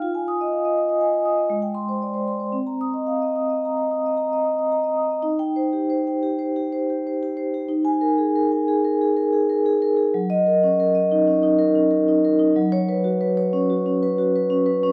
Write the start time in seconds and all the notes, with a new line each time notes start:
0.02 F4
0.15 G#5
0.28 D#6
0.41 D#5
0.53 F5
0.65 D#5
0.78 D#6
0.89 D#5
1.01 G#5
1.14 D#5
1.25 D#6
1.38 D#5
1.50 G#3
1.62 G5
1.75 C6
1.89 C5
2.02 D5
2.14 C5
2.28 C6
2.40 C5
2.52 C4
2.67 A#5
2.81 D#6
2.94 D#5
3.07 F5
3.22 D#5
3.36 D#6
3.50 D#5
3.65 A#5
3.77 D#5
3.91 D#6
4.06 D#5
4.17 A#5
4.33 D#5
4.44 D#6
4.59 D#5
4.72 A#5
4.84 D#5
4.97 D#6
5.11 D#5
5.23 D#4
5.39 G5
5.56 C5
5.73 G4
5.90 C5
6.07 G5
6.23 G4
6.39 C5
6.56 G4
6.73 C5
6.90 G4
7.07 C5
7.23 G4
7.37 C5
7.54 G4
7.69 D#4
7.85 G#5
8.01 A#4
8.18 G#4
8.36 A#4
8.52 G#5
8.68 G#4
8.85 A#4
9.01 G#4
9.17 A#4
9.33 G#4
9.50 A#4
9.66 G#4
9.82 A#4
9.97 G#4
10.14 F#3
10.30 D#5
10.46 A#4
10.63 C#4
10.80 A#4
10.95 D#5
11.12 D#4
11.28 C#4
11.43 D#4
11.59 A#4
11.75 C#4
11.91 A#4
12.08 D#4
12.25 A#4
12.39 D#4
12.56 F#3
12.72 C#5
12.89 B4
13.04 F#4
13.21 B4
13.37 C#5
13.53 C#4
13.70 F#4
13.86 C#4
14.03 B4
14.18 F#4
14.36 B4
14.50 C#4
14.66 B4
14.83 C#4